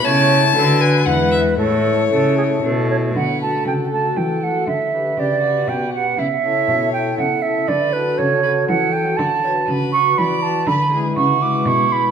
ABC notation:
X:1
M:3/4
L:1/8
Q:1/4=120
K:A
V:1 name="Flute"
c2 A B B2 | A2 A G A c | [K:D] f a g a g f | e2 d2 g f |
e3 g f e | d B c2 f g | [K:Bdor] a3 c' b a | b z c' d' c' b |]
V:2 name="Violin"
a3 g f e | c4 z2 | [K:D] B2 A4- | A2 G F3 |
E c3 A2 | B2 A B A2 | [K:Bdor] F c B2 d2 | B G F2 E2 |]
V:3 name="Pipe organ"
[A,Ec]2 [FB]2 [G,EB]2 | [A,EA]6 | [K:D] z [A,FA]2 [A,FA]2 [A,FA] | z [GB]2 [GB]2 [GB] |
z [EA]2 [EA]2 [EA] | z [FA]2 [FA]2 [FA] | [K:Bdor] z [FB]2 [FB]2 [FB] | z [G,EB]2 [G,EB]2 [G,EB] |]
V:4 name="Pipe organ" clef=bass
C,2 D,2 E,,2 | A,,2 C,2 B,,2 | [K:D] D,2 C,2 E,2 | D,2 C,2 B,,2 |
C,2 B,,2 C,2 | D,2 C,2 E,2 | [K:Bdor] D,2 C,2 E,2 | D,2 C,2 B,,2 |]
V:5 name="Cello" clef=bass
C,2 D,2 E,,2 | A,,2 C,2 B,,2 | [K:D] D,2 C,2 E,2 | D,2 C,2 B,,2 |
C,2 B,,2 C,2 | D,2 C,2 E,2 | [K:Bdor] D,2 C,2 E,2 | D,2 C,2 B,,2 |]